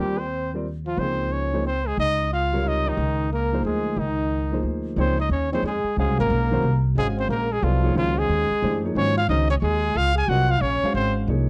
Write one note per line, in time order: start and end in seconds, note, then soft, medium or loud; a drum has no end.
0.00 0.94 D#2 medium
0.00 0.17 G3 medium
0.00 0.20 G3 medium
0.00 0.18 C4 medium
0.00 0.18 F4 medium
0.00 0.20 G4 medium
0.00 0.18 A#4 medium
0.00 0.18 D5 medium
0.19 0.52 C4 medium
0.19 0.52 C5 medium
0.54 0.64 G3 medium
0.54 0.64 C4 medium
0.54 0.65 F4 medium
0.54 0.65 A#4 medium
0.54 0.65 D5 medium
0.86 0.99 F3 medium
0.86 1.00 F4 medium
0.97 1.94 C#2 medium
0.97 1.49 F3 medium
0.97 1.49 A#3 medium
0.97 1.33 C4 medium
0.97 1.49 D#4 soft
0.97 1.49 G#4 medium
0.97 1.34 C5 loud
0.97 1.49 C5 medium
1.32 1.65 C#4 medium
1.32 1.65 C#5 medium
1.53 1.64 F3 medium
1.53 1.64 A#3 medium
1.53 1.64 D#4 medium
1.53 1.64 G#4 medium
1.53 1.65 C5 medium
1.66 1.89 C4 medium
1.66 1.88 C5 medium
1.87 1.98 G#3 medium
1.87 1.98 G#4 medium
1.97 2.94 C#2 medium
1.97 2.29 D#4 medium
1.97 2.30 D#5 loud
2.33 2.68 F4 medium
2.33 2.69 F5 medium
2.52 2.96 C3 medium
2.52 2.95 G3 medium
2.52 2.96 F4 medium
2.52 2.96 A#4 medium
2.52 2.96 C#5 medium
2.66 2.88 D#4 medium
2.66 2.90 D#5 medium
2.87 3.31 D#3 medium
2.87 3.33 D#4 medium
2.97 3.60 C#2 medium
3.32 3.62 A#3 medium
3.32 3.63 A#4 medium
3.53 3.95 F3 medium
3.53 3.96 A#3 soft
3.53 3.96 D#4 soft
3.53 3.96 G#4 medium
3.53 3.96 C5 medium
3.63 3.95 D2 medium
3.63 3.99 G#3 medium
3.63 4.00 G#4 medium
3.97 4.60 C#2 medium
3.97 4.64 D#3 medium
3.97 4.65 D#4 medium
4.52 4.95 F3 medium
4.52 4.95 A#3 medium
4.52 4.95 D#4 soft
4.52 4.96 G#4 soft
4.52 4.96 C5 medium
4.63 4.94 D2 medium
4.96 5.29 C#2 medium
4.96 5.16 F3 medium
4.96 5.16 A#3 medium
4.96 5.17 C4 medium
4.96 5.17 D#4 medium
4.96 5.17 G#4 medium
4.96 5.18 C5 medium
4.96 5.17 C#5 medium
5.19 5.30 D#4 medium
5.19 5.31 D#5 medium
5.29 5.62 D#2 medium
5.29 5.51 C#4 medium
5.29 5.51 C#5 medium
5.52 5.63 F3 medium
5.52 5.63 A#3 medium
5.52 5.63 C4 medium
5.52 5.63 D#4 medium
5.52 5.64 G#4 medium
5.52 5.64 C5 medium
5.52 5.64 C#5 medium
5.63 5.83 F2 medium
5.63 5.95 G#3 medium
5.63 5.96 G#4 medium
5.84 muted upright bass stroke soft
5.97 6.08 C#2 medium
5.97 6.17 G#3 medium
5.97 6.48 G#3 medium
5.97 6.48 C#4 medium
5.97 6.48 F#4 medium
5.97 6.18 G#4 medium
5.97 6.48 C5 medium
5.97 6.48 F5 medium
6.08 6.18 C2 medium
6.18 6.29 G#1 medium
6.18 6.81 A#3 medium
6.18 6.81 A#4 medium
6.30 6.62 B1 loud
6.51 6.62 D#3 medium
6.51 6.62 G#3 medium
6.51 6.63 C#4 medium
6.51 6.63 F#4 medium
6.51 6.63 C5 medium
6.63 6.95 C2 medium
6.95 7.28 G#1 medium
6.95 7.06 G#3 medium
6.95 7.47 G#3 medium
6.95 7.47 C#4 medium
6.95 7.48 F#4 medium
6.95 7.07 G#4 medium
6.95 7.48 C5 medium
6.95 7.48 F5 medium
7.17 7.29 C4 medium
7.17 7.30 C5 medium
7.29 7.61 A#1 medium
7.29 7.52 A#3 medium
7.29 7.53 A#4 medium
7.51 7.64 G#3 medium
7.51 7.65 G#4 medium
7.62 7.95 C2 medium
7.62 7.95 F3 medium
7.62 7.82 F#3 medium
7.62 7.82 B3 medium
7.62 7.82 E4 medium
7.62 7.96 F4 medium
7.62 7.82 A4 medium
7.62 7.83 D5 medium
7.83 8.13 F3 medium
7.83 8.13 A#3 medium
7.83 8.13 D#4 medium
7.83 8.13 G#4 medium
7.83 8.13 C#5 medium
7.95 8.28 C#2 medium
7.95 8.46 D#3 medium
7.95 8.17 F3 medium
7.95 8.46 G#3 medium
7.95 8.46 C#4 medium
7.95 8.20 F4 loud
7.95 8.46 F#4 medium
7.95 8.47 C5 medium
8.16 8.83 G#3 medium
8.16 8.84 G#4 loud
8.29 8.49 D#2 medium
8.51 muted upright bass stroke soft
8.62 8.95 F#2 medium
8.62 8.81 E3 medium
8.62 8.81 A3 medium
8.62 8.82 D4 medium
8.62 8.82 G4 medium
8.62 8.82 C5 medium
8.84 9.13 F3 medium
8.84 9.13 A#3 medium
8.84 9.13 D#4 medium
8.84 9.14 G#4 medium
8.84 9.13 C#5 medium
8.95 9.28 G#2 medium
8.95 9.14 D#3 medium
8.95 9.15 G#3 medium
8.95 9.15 C#4 medium
8.95 9.15 F#4 medium
8.95 9.15 C5 medium
8.95 9.16 C#5 loud
9.17 9.28 F4 medium
9.17 9.29 F5 medium
9.28 9.61 C#2 loud
9.28 9.48 D#3 medium
9.28 9.48 G#3 medium
9.28 9.49 C#4 medium
9.28 9.48 D#4 medium
9.28 9.49 F#4 medium
9.28 9.49 C5 medium
9.28 9.49 D#5 medium
9.50 9.56 C#4 medium
9.50 9.56 C#5 medium
9.62 9.94 D#2 loud
9.62 9.97 G#3 medium
9.62 9.99 G#4 medium
9.95 10.27 C#2 medium
9.95 10.15 F4 medium
9.95 10.17 F5 loud
10.15 10.30 G#4 medium
10.15 10.30 G#5 loud
10.28 10.60 C2 medium
10.28 10.48 F#3 medium
10.28 10.48 C4 medium
10.28 10.48 F4 medium
10.28 10.51 F#4 medium
10.28 10.48 A#4 medium
10.28 10.49 D#5 medium
10.28 10.52 F#5 medium
10.49 10.63 F4 medium
10.49 10.63 F5 loud
10.61 10.81 A#1 medium
10.61 10.94 C#4 medium
10.61 10.94 C#5 loud
10.83 11.26 G#3 medium
10.83 11.26 C#4 medium
10.83 11.26 F#4 medium
10.83 11.27 C5 medium
10.83 11.27 F5 medium
10.83 muted upright bass stroke soft
10.94 11.27 G#1 medium
10.94 11.14 C4 medium
10.94 11.14 C5 loud
11.27 11.49 C2 medium
11.27 11.47 F3 medium
11.27 11.47 A#3 medium
11.27 11.47 D#4 medium
11.27 11.48 G#4 medium
11.27 11.48 C#5 medium